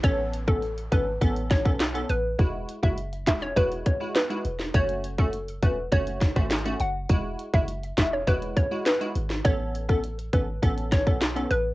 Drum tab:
HH |x-x-xxx-xxx-xxx-|x-x-xxx-xxx-xxx-|xxx-xxx-xxx-xxx-|x-x-xxx-xxx-xxx-|
CP |------------x---|------x-----x---|------------x---|------x-----x---|
SD |----------o-o---|------o-----o--o|----------oro---|------o-----o--o|
BD |o--o--o-o-oo----|o--o--o-o-o-----|o--o--o-o-oo----|o--o--o-o-o-----|

HH |x-x-xxx-xxx-xxx-|
CP |------------x---|
SD |----------o-o---|
BD |o--o--o-o-oo----|